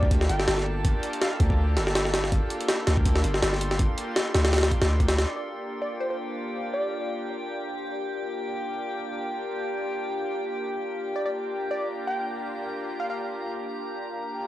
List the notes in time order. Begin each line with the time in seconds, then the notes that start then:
Already playing: D2 A#3 D4 F4 G4 A4 A5
0.03 kick
0.11 kick, closed hi-hat
0.21 snare
0.29 G1 G5, closed hi-hat
0.40 snare
0.48 G1, snare, closed hi-hat
0.58 snare
0.85 G1 A#3 D4 F4 G4, kick, closed hi-hat
1.03 closed hi-hat
1.13 closed hi-hat
1.22 F5, snare, closed hi-hat
1.31 F5
1.40 D2 A#3 D4 F4 G4, kick, closed hi-hat
1.50 kick
1.77 G1, snare, closed hi-hat
1.87 snare
1.95 snare, closed hi-hat
2.05 snare
2.14 snare, closed hi-hat
2.24 snare
2.32 G1 A#3 D4 F4 G4 C6, kick, closed hi-hat
2.50 closed hi-hat
2.61 closed hi-hat
2.69 snare, closed hi-hat
2.87 D2 A#3 D4 F4 G4, snare, closed hi-hat
2.97 kick
3.05 kick, closed hi-hat
3.16 snare
3.24 G1, closed hi-hat
3.34 snare
3.42 G1, snare, closed hi-hat
3.53 snare
3.61 closed hi-hat
3.71 snare
3.79 G1 A#3 D4 F4 G4, kick, closed hi-hat
3.98 closed hi-hat
4.16 snare, closed hi-hat
4.34 D2 A#3 D4 F4 G4, snare, closed hi-hat
4.45 snare, closed hi-hat
4.53 snare, closed hi-hat
4.58 snare, closed hi-hat
4.63 snare, closed hi-hat
4.71 kick, closed hi-hat
4.82 D2, snare, closed hi-hat
5.00 kick, closed hi-hat
5.08 snare, closed hi-hat
5.18 snare, closed hi-hat
5.26 A#3 D4 F4 G4 D5 G5
5.36 D5
5.82 D5
6.00 C5
6.10 C5
6.74 D5
8.21 A#3 D4 F4 G4
11.15 A#3 D4 F4 G4 D5 A#5
11.26 D5
11.71 D5
12.07 G5
13.00 F5
13.10 F5
14.10 A#3 D4 F4 G4